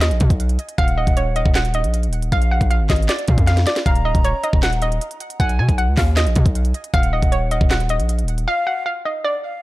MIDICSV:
0, 0, Header, 1, 5, 480
1, 0, Start_track
1, 0, Key_signature, -6, "minor"
1, 0, Tempo, 384615
1, 977, Time_signature, 4, 2, 24, 8
1, 12007, End_track
2, 0, Start_track
2, 0, Title_t, "Flute"
2, 0, Program_c, 0, 73
2, 981, Note_on_c, 0, 78, 105
2, 1889, Note_off_c, 0, 78, 0
2, 2902, Note_on_c, 0, 77, 109
2, 3351, Note_off_c, 0, 77, 0
2, 3859, Note_on_c, 0, 74, 86
2, 4086, Note_off_c, 0, 74, 0
2, 4098, Note_on_c, 0, 77, 71
2, 4326, Note_off_c, 0, 77, 0
2, 4819, Note_on_c, 0, 82, 104
2, 5728, Note_off_c, 0, 82, 0
2, 6733, Note_on_c, 0, 80, 105
2, 7186, Note_off_c, 0, 80, 0
2, 8661, Note_on_c, 0, 78, 111
2, 9569, Note_off_c, 0, 78, 0
2, 10579, Note_on_c, 0, 77, 112
2, 11029, Note_off_c, 0, 77, 0
2, 11539, Note_on_c, 0, 74, 85
2, 11766, Note_off_c, 0, 74, 0
2, 11778, Note_on_c, 0, 77, 70
2, 12006, Note_off_c, 0, 77, 0
2, 12007, End_track
3, 0, Start_track
3, 0, Title_t, "Synth pluck"
3, 0, Program_c, 1, 84
3, 13, Note_on_c, 1, 75, 85
3, 925, Note_off_c, 1, 75, 0
3, 976, Note_on_c, 1, 77, 123
3, 1161, Note_off_c, 1, 77, 0
3, 1217, Note_on_c, 1, 75, 79
3, 1401, Note_off_c, 1, 75, 0
3, 1458, Note_on_c, 1, 73, 79
3, 1642, Note_off_c, 1, 73, 0
3, 1697, Note_on_c, 1, 75, 84
3, 1881, Note_off_c, 1, 75, 0
3, 1938, Note_on_c, 1, 78, 92
3, 2121, Note_off_c, 1, 78, 0
3, 2180, Note_on_c, 1, 75, 72
3, 2855, Note_off_c, 1, 75, 0
3, 2898, Note_on_c, 1, 77, 108
3, 3082, Note_off_c, 1, 77, 0
3, 3138, Note_on_c, 1, 78, 78
3, 3321, Note_off_c, 1, 78, 0
3, 3376, Note_on_c, 1, 77, 87
3, 3560, Note_off_c, 1, 77, 0
3, 3619, Note_on_c, 1, 75, 70
3, 3803, Note_off_c, 1, 75, 0
3, 3856, Note_on_c, 1, 74, 91
3, 4308, Note_off_c, 1, 74, 0
3, 4334, Note_on_c, 1, 77, 89
3, 4519, Note_off_c, 1, 77, 0
3, 4577, Note_on_c, 1, 74, 91
3, 4761, Note_off_c, 1, 74, 0
3, 4817, Note_on_c, 1, 77, 95
3, 5001, Note_off_c, 1, 77, 0
3, 5057, Note_on_c, 1, 75, 79
3, 5241, Note_off_c, 1, 75, 0
3, 5299, Note_on_c, 1, 73, 88
3, 5482, Note_off_c, 1, 73, 0
3, 5537, Note_on_c, 1, 75, 77
3, 5721, Note_off_c, 1, 75, 0
3, 5778, Note_on_c, 1, 78, 100
3, 5962, Note_off_c, 1, 78, 0
3, 6019, Note_on_c, 1, 75, 79
3, 6695, Note_off_c, 1, 75, 0
3, 6737, Note_on_c, 1, 78, 115
3, 6921, Note_off_c, 1, 78, 0
3, 6978, Note_on_c, 1, 80, 89
3, 7162, Note_off_c, 1, 80, 0
3, 7214, Note_on_c, 1, 78, 97
3, 7399, Note_off_c, 1, 78, 0
3, 7459, Note_on_c, 1, 77, 81
3, 7642, Note_off_c, 1, 77, 0
3, 7695, Note_on_c, 1, 75, 84
3, 8606, Note_off_c, 1, 75, 0
3, 8657, Note_on_c, 1, 77, 121
3, 8841, Note_off_c, 1, 77, 0
3, 8898, Note_on_c, 1, 75, 80
3, 9082, Note_off_c, 1, 75, 0
3, 9135, Note_on_c, 1, 73, 83
3, 9320, Note_off_c, 1, 73, 0
3, 9378, Note_on_c, 1, 75, 82
3, 9562, Note_off_c, 1, 75, 0
3, 9619, Note_on_c, 1, 78, 92
3, 9802, Note_off_c, 1, 78, 0
3, 9860, Note_on_c, 1, 75, 75
3, 10535, Note_off_c, 1, 75, 0
3, 10579, Note_on_c, 1, 77, 108
3, 10762, Note_off_c, 1, 77, 0
3, 10816, Note_on_c, 1, 78, 80
3, 11001, Note_off_c, 1, 78, 0
3, 11055, Note_on_c, 1, 77, 87
3, 11240, Note_off_c, 1, 77, 0
3, 11300, Note_on_c, 1, 75, 70
3, 11483, Note_off_c, 1, 75, 0
3, 11538, Note_on_c, 1, 74, 88
3, 11989, Note_off_c, 1, 74, 0
3, 12007, End_track
4, 0, Start_track
4, 0, Title_t, "808-style bass"
4, 0, Program_c, 2, 38
4, 0, Note_on_c, 2, 39, 106
4, 137, Note_on_c, 2, 34, 99
4, 156, Note_off_c, 2, 39, 0
4, 251, Note_off_c, 2, 34, 0
4, 258, Note_on_c, 2, 47, 108
4, 369, Note_off_c, 2, 47, 0
4, 377, Note_on_c, 2, 35, 99
4, 722, Note_off_c, 2, 35, 0
4, 976, Note_on_c, 2, 27, 114
4, 1322, Note_off_c, 2, 27, 0
4, 1336, Note_on_c, 2, 27, 104
4, 1797, Note_off_c, 2, 27, 0
4, 1816, Note_on_c, 2, 27, 107
4, 2297, Note_on_c, 2, 34, 98
4, 2316, Note_off_c, 2, 27, 0
4, 2597, Note_on_c, 2, 27, 100
4, 2615, Note_off_c, 2, 34, 0
4, 2882, Note_off_c, 2, 27, 0
4, 2896, Note_on_c, 2, 34, 110
4, 3242, Note_off_c, 2, 34, 0
4, 3256, Note_on_c, 2, 34, 108
4, 3497, Note_on_c, 2, 32, 104
4, 3516, Note_off_c, 2, 34, 0
4, 3611, Note_off_c, 2, 32, 0
4, 3617, Note_on_c, 2, 32, 105
4, 3848, Note_off_c, 2, 32, 0
4, 4097, Note_on_c, 2, 46, 105
4, 4208, Note_off_c, 2, 46, 0
4, 4215, Note_on_c, 2, 41, 103
4, 4562, Note_off_c, 2, 41, 0
4, 4816, Note_on_c, 2, 27, 111
4, 5162, Note_off_c, 2, 27, 0
4, 5176, Note_on_c, 2, 27, 102
4, 5407, Note_off_c, 2, 27, 0
4, 5656, Note_on_c, 2, 27, 102
4, 6233, Note_off_c, 2, 27, 0
4, 6737, Note_on_c, 2, 35, 105
4, 6977, Note_on_c, 2, 47, 103
4, 6995, Note_off_c, 2, 35, 0
4, 7091, Note_off_c, 2, 47, 0
4, 7096, Note_on_c, 2, 35, 107
4, 7337, Note_on_c, 2, 37, 104
4, 7355, Note_off_c, 2, 35, 0
4, 7451, Note_off_c, 2, 37, 0
4, 7458, Note_on_c, 2, 39, 106
4, 7815, Note_on_c, 2, 34, 103
4, 7834, Note_off_c, 2, 39, 0
4, 7930, Note_off_c, 2, 34, 0
4, 7938, Note_on_c, 2, 47, 103
4, 8049, Note_off_c, 2, 47, 0
4, 8057, Note_on_c, 2, 35, 100
4, 8403, Note_off_c, 2, 35, 0
4, 8657, Note_on_c, 2, 27, 110
4, 9002, Note_off_c, 2, 27, 0
4, 9016, Note_on_c, 2, 27, 100
4, 9477, Note_off_c, 2, 27, 0
4, 9497, Note_on_c, 2, 27, 108
4, 9977, Note_on_c, 2, 34, 96
4, 9995, Note_off_c, 2, 27, 0
4, 10277, Note_on_c, 2, 27, 101
4, 10296, Note_off_c, 2, 34, 0
4, 10562, Note_off_c, 2, 27, 0
4, 12007, End_track
5, 0, Start_track
5, 0, Title_t, "Drums"
5, 16, Note_on_c, 9, 38, 110
5, 16, Note_on_c, 9, 39, 90
5, 18, Note_on_c, 9, 42, 88
5, 138, Note_off_c, 9, 42, 0
5, 138, Note_on_c, 9, 42, 55
5, 141, Note_off_c, 9, 38, 0
5, 141, Note_off_c, 9, 39, 0
5, 251, Note_off_c, 9, 42, 0
5, 251, Note_on_c, 9, 42, 77
5, 258, Note_on_c, 9, 36, 95
5, 376, Note_off_c, 9, 42, 0
5, 377, Note_off_c, 9, 36, 0
5, 377, Note_on_c, 9, 36, 97
5, 379, Note_on_c, 9, 42, 60
5, 498, Note_off_c, 9, 42, 0
5, 498, Note_on_c, 9, 42, 80
5, 501, Note_off_c, 9, 36, 0
5, 616, Note_off_c, 9, 42, 0
5, 616, Note_on_c, 9, 42, 51
5, 734, Note_off_c, 9, 42, 0
5, 734, Note_on_c, 9, 42, 69
5, 856, Note_off_c, 9, 42, 0
5, 856, Note_on_c, 9, 42, 57
5, 977, Note_off_c, 9, 42, 0
5, 977, Note_on_c, 9, 36, 107
5, 977, Note_on_c, 9, 42, 77
5, 1096, Note_off_c, 9, 42, 0
5, 1096, Note_on_c, 9, 42, 55
5, 1101, Note_off_c, 9, 36, 0
5, 1221, Note_off_c, 9, 42, 0
5, 1336, Note_on_c, 9, 36, 90
5, 1339, Note_on_c, 9, 42, 56
5, 1457, Note_off_c, 9, 42, 0
5, 1457, Note_on_c, 9, 42, 77
5, 1461, Note_off_c, 9, 36, 0
5, 1582, Note_off_c, 9, 42, 0
5, 1695, Note_on_c, 9, 42, 74
5, 1816, Note_on_c, 9, 36, 96
5, 1819, Note_off_c, 9, 42, 0
5, 1936, Note_on_c, 9, 38, 108
5, 1937, Note_on_c, 9, 39, 91
5, 1938, Note_on_c, 9, 42, 90
5, 1941, Note_off_c, 9, 36, 0
5, 2057, Note_off_c, 9, 42, 0
5, 2057, Note_on_c, 9, 42, 54
5, 2061, Note_off_c, 9, 38, 0
5, 2061, Note_off_c, 9, 39, 0
5, 2169, Note_off_c, 9, 42, 0
5, 2169, Note_on_c, 9, 42, 80
5, 2294, Note_off_c, 9, 42, 0
5, 2297, Note_on_c, 9, 42, 57
5, 2417, Note_off_c, 9, 42, 0
5, 2417, Note_on_c, 9, 42, 80
5, 2536, Note_off_c, 9, 42, 0
5, 2536, Note_on_c, 9, 42, 51
5, 2654, Note_off_c, 9, 42, 0
5, 2654, Note_on_c, 9, 42, 69
5, 2776, Note_off_c, 9, 42, 0
5, 2776, Note_on_c, 9, 42, 56
5, 2897, Note_off_c, 9, 42, 0
5, 2897, Note_on_c, 9, 36, 110
5, 2897, Note_on_c, 9, 42, 77
5, 3016, Note_off_c, 9, 42, 0
5, 3016, Note_on_c, 9, 42, 57
5, 3021, Note_off_c, 9, 36, 0
5, 3140, Note_off_c, 9, 42, 0
5, 3256, Note_on_c, 9, 36, 90
5, 3257, Note_on_c, 9, 42, 55
5, 3377, Note_off_c, 9, 42, 0
5, 3377, Note_on_c, 9, 42, 78
5, 3381, Note_off_c, 9, 36, 0
5, 3502, Note_off_c, 9, 42, 0
5, 3614, Note_on_c, 9, 46, 77
5, 3615, Note_on_c, 9, 38, 97
5, 3615, Note_on_c, 9, 39, 77
5, 3616, Note_on_c, 9, 42, 76
5, 3617, Note_on_c, 9, 36, 98
5, 3696, Note_off_c, 9, 42, 0
5, 3696, Note_on_c, 9, 42, 57
5, 3739, Note_off_c, 9, 46, 0
5, 3740, Note_off_c, 9, 38, 0
5, 3740, Note_off_c, 9, 39, 0
5, 3742, Note_off_c, 9, 36, 0
5, 3775, Note_off_c, 9, 42, 0
5, 3775, Note_on_c, 9, 42, 42
5, 3855, Note_on_c, 9, 38, 108
5, 3855, Note_on_c, 9, 39, 92
5, 3857, Note_off_c, 9, 42, 0
5, 3857, Note_on_c, 9, 42, 87
5, 3976, Note_off_c, 9, 42, 0
5, 3976, Note_on_c, 9, 42, 54
5, 3980, Note_off_c, 9, 38, 0
5, 3980, Note_off_c, 9, 39, 0
5, 4088, Note_off_c, 9, 42, 0
5, 4088, Note_on_c, 9, 42, 75
5, 4097, Note_on_c, 9, 36, 96
5, 4213, Note_off_c, 9, 42, 0
5, 4216, Note_off_c, 9, 36, 0
5, 4216, Note_on_c, 9, 36, 96
5, 4217, Note_on_c, 9, 42, 58
5, 4335, Note_on_c, 9, 38, 58
5, 4336, Note_off_c, 9, 42, 0
5, 4336, Note_on_c, 9, 42, 83
5, 4340, Note_off_c, 9, 36, 0
5, 4455, Note_off_c, 9, 38, 0
5, 4455, Note_off_c, 9, 42, 0
5, 4455, Note_on_c, 9, 38, 63
5, 4455, Note_on_c, 9, 42, 50
5, 4574, Note_off_c, 9, 42, 0
5, 4574, Note_on_c, 9, 42, 69
5, 4575, Note_off_c, 9, 38, 0
5, 4575, Note_on_c, 9, 38, 91
5, 4695, Note_off_c, 9, 38, 0
5, 4695, Note_off_c, 9, 42, 0
5, 4695, Note_on_c, 9, 38, 86
5, 4695, Note_on_c, 9, 42, 56
5, 4816, Note_on_c, 9, 36, 106
5, 4817, Note_off_c, 9, 42, 0
5, 4817, Note_on_c, 9, 42, 76
5, 4820, Note_off_c, 9, 38, 0
5, 4936, Note_off_c, 9, 42, 0
5, 4936, Note_on_c, 9, 42, 54
5, 4941, Note_off_c, 9, 36, 0
5, 5061, Note_off_c, 9, 42, 0
5, 5176, Note_on_c, 9, 36, 88
5, 5178, Note_on_c, 9, 42, 56
5, 5298, Note_off_c, 9, 42, 0
5, 5298, Note_on_c, 9, 42, 74
5, 5301, Note_off_c, 9, 36, 0
5, 5423, Note_off_c, 9, 42, 0
5, 5535, Note_on_c, 9, 42, 73
5, 5656, Note_on_c, 9, 36, 96
5, 5660, Note_off_c, 9, 42, 0
5, 5776, Note_on_c, 9, 38, 113
5, 5776, Note_on_c, 9, 39, 91
5, 5778, Note_on_c, 9, 42, 86
5, 5781, Note_off_c, 9, 36, 0
5, 5898, Note_off_c, 9, 42, 0
5, 5898, Note_on_c, 9, 42, 54
5, 5901, Note_off_c, 9, 38, 0
5, 5901, Note_off_c, 9, 39, 0
5, 6011, Note_off_c, 9, 42, 0
5, 6011, Note_on_c, 9, 42, 78
5, 6136, Note_off_c, 9, 42, 0
5, 6140, Note_on_c, 9, 42, 58
5, 6258, Note_off_c, 9, 42, 0
5, 6258, Note_on_c, 9, 42, 80
5, 6376, Note_off_c, 9, 42, 0
5, 6376, Note_on_c, 9, 42, 51
5, 6495, Note_off_c, 9, 42, 0
5, 6495, Note_on_c, 9, 42, 69
5, 6616, Note_off_c, 9, 42, 0
5, 6616, Note_on_c, 9, 42, 58
5, 6737, Note_on_c, 9, 36, 108
5, 6738, Note_off_c, 9, 42, 0
5, 6738, Note_on_c, 9, 42, 78
5, 6856, Note_off_c, 9, 42, 0
5, 6856, Note_on_c, 9, 42, 56
5, 6861, Note_off_c, 9, 36, 0
5, 6981, Note_off_c, 9, 42, 0
5, 7096, Note_on_c, 9, 36, 88
5, 7099, Note_on_c, 9, 42, 56
5, 7218, Note_off_c, 9, 42, 0
5, 7218, Note_on_c, 9, 42, 74
5, 7221, Note_off_c, 9, 36, 0
5, 7343, Note_off_c, 9, 42, 0
5, 7455, Note_on_c, 9, 38, 99
5, 7455, Note_on_c, 9, 46, 80
5, 7456, Note_on_c, 9, 39, 76
5, 7457, Note_on_c, 9, 36, 94
5, 7580, Note_off_c, 9, 38, 0
5, 7580, Note_off_c, 9, 39, 0
5, 7580, Note_off_c, 9, 46, 0
5, 7582, Note_off_c, 9, 36, 0
5, 7698, Note_on_c, 9, 38, 110
5, 7698, Note_on_c, 9, 39, 93
5, 7700, Note_on_c, 9, 42, 88
5, 7819, Note_off_c, 9, 42, 0
5, 7819, Note_on_c, 9, 42, 56
5, 7822, Note_off_c, 9, 38, 0
5, 7823, Note_off_c, 9, 39, 0
5, 7931, Note_off_c, 9, 42, 0
5, 7931, Note_on_c, 9, 42, 77
5, 7938, Note_on_c, 9, 36, 97
5, 8056, Note_off_c, 9, 42, 0
5, 8057, Note_off_c, 9, 36, 0
5, 8057, Note_on_c, 9, 36, 97
5, 8059, Note_on_c, 9, 42, 58
5, 8178, Note_off_c, 9, 42, 0
5, 8178, Note_on_c, 9, 42, 83
5, 8182, Note_off_c, 9, 36, 0
5, 8297, Note_off_c, 9, 42, 0
5, 8297, Note_on_c, 9, 42, 51
5, 8416, Note_off_c, 9, 42, 0
5, 8416, Note_on_c, 9, 42, 69
5, 8537, Note_off_c, 9, 42, 0
5, 8537, Note_on_c, 9, 42, 57
5, 8657, Note_off_c, 9, 42, 0
5, 8657, Note_on_c, 9, 36, 107
5, 8657, Note_on_c, 9, 42, 78
5, 8776, Note_off_c, 9, 42, 0
5, 8776, Note_on_c, 9, 42, 56
5, 8782, Note_off_c, 9, 36, 0
5, 8901, Note_off_c, 9, 42, 0
5, 9016, Note_on_c, 9, 36, 89
5, 9019, Note_on_c, 9, 42, 55
5, 9138, Note_off_c, 9, 42, 0
5, 9138, Note_on_c, 9, 42, 74
5, 9141, Note_off_c, 9, 36, 0
5, 9262, Note_off_c, 9, 42, 0
5, 9375, Note_on_c, 9, 42, 72
5, 9496, Note_on_c, 9, 36, 96
5, 9500, Note_off_c, 9, 42, 0
5, 9617, Note_on_c, 9, 38, 108
5, 9617, Note_on_c, 9, 39, 92
5, 9619, Note_on_c, 9, 42, 87
5, 9621, Note_off_c, 9, 36, 0
5, 9738, Note_off_c, 9, 42, 0
5, 9738, Note_on_c, 9, 42, 55
5, 9742, Note_off_c, 9, 38, 0
5, 9742, Note_off_c, 9, 39, 0
5, 9850, Note_off_c, 9, 42, 0
5, 9850, Note_on_c, 9, 42, 77
5, 9975, Note_off_c, 9, 42, 0
5, 9979, Note_on_c, 9, 42, 58
5, 10097, Note_off_c, 9, 42, 0
5, 10097, Note_on_c, 9, 42, 84
5, 10216, Note_off_c, 9, 42, 0
5, 10216, Note_on_c, 9, 42, 50
5, 10335, Note_off_c, 9, 42, 0
5, 10335, Note_on_c, 9, 42, 68
5, 10457, Note_off_c, 9, 42, 0
5, 10457, Note_on_c, 9, 42, 55
5, 10582, Note_off_c, 9, 42, 0
5, 12007, End_track
0, 0, End_of_file